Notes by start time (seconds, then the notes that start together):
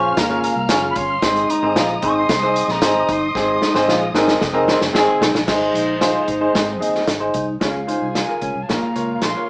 Already playing: A#1 C#4 F4 G#4 C5 F5 C#6 F6
0.17 G#1 A#3 A#5, kick, snare, closed hi-hat
0.29 C#4 F4 G#4 C#5
0.43 A#5, closed hi-hat
0.56 C2
0.69 F#1 C#4 F4 G#4 C#5, snare, closed hi-hat
0.90 B5
0.96 G1 C#4 C6, kick, closed hi-hat
1.22 G#1 G#2 C4 D#4 G#4 C5 D#5 D#6, kick, snare, closed hi-hat
1.36 closed hi-hat
1.49 D#4 A#5, closed hi-hat
1.62 G#1 C4 D#4 G#4 C5
1.75 A#1 F4, snare, closed hi-hat
2.02 G#1 C4 D#4 G#4 C5 C#6, kick, closed hi-hat
2.17 C6
2.29 C2 C4, kick, snare, closed hi-hat
2.42 C4 D#4 G#4 C5
2.56 closed hi-hat
2.68 A#1 A#5, snare
2.81 G#1 C4 D#4 G#4 C5, snare, closed hi-hat
3.09 G1 D#4 C6, kick, closed hi-hat
3.35 G#1 G#2 C4 D#4 G#4 C5, kick, snare
3.62 D#4, snare
3.74 G#1 C4 D#4 G#4 C5, snare
3.88 A#1 F4, snare
4.14 G#1 C4 D#4 G#4 A#4, snare
4.28 snare
4.41 F1 C4, kick, snare
4.53 C4 D#4 G#4 A#4
4.68 D#3 C4 G#4 G#5, snare
4.81 F#1, snare
4.93 G#1 D#3 C4 D#4 G#4 D#5, snare
5.21 A#1 D#4, snare
5.34 A#1, snare
5.47 G#1 G#2 G#3 D#4 G#4 C5, kick, snare, crash
5.74 A#1 D#4, closed hi-hat
6.01 D#4 F4 G#4 C5, snare, closed hi-hat
6.27 G#1 D#4, kick, closed hi-hat
6.41 D#4 G#4 C5
6.54 G#2 C4, kick, snare, closed hi-hat
6.80 D#2 D#4 G#4 D#5, closed hi-hat
6.95 snare
7.07 G#1, snare, closed hi-hat
7.19 D#4 G#4 C5
7.34 C2 D#4, kick, closed hi-hat
7.60 C#2 C#3 C#4 F4 G#4 C#5 F5 G#5, kick, snare, closed hi-hat
7.87 D#4 F4 G#4 C5, closed hi-hat
8.02 C2
8.15 F4 G#5, snare, closed hi-hat
8.28 F4 G#4 A#4
8.41 C#2 C#4, kick, closed hi-hat
8.55 C2
8.62 A5
8.68 A#1 A#2 A#3 F4 A#4 C#5 F5 A#5, kick, snare, closed hi-hat
8.83 muted fingered electric bass stroke
8.95 C#2 F4 A#4 C#5, closed hi-hat
9.22 A#1 C6, snare, closed hi-hat
9.35 F4 A#4 C#5